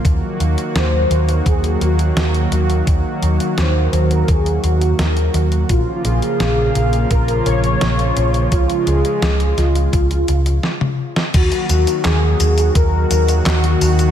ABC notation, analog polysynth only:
X:1
M:4/4
L:1/16
Q:1/4=85
K:Ebm
V:1 name="Analog polysynth"
z4 =c3 B A2 G2 B3 z | z4 =c3 B A2 G2 B3 z | F2 A6 B2 d6 | F2 A4 F8 z2 |
G4 A4 B4 G3 z |]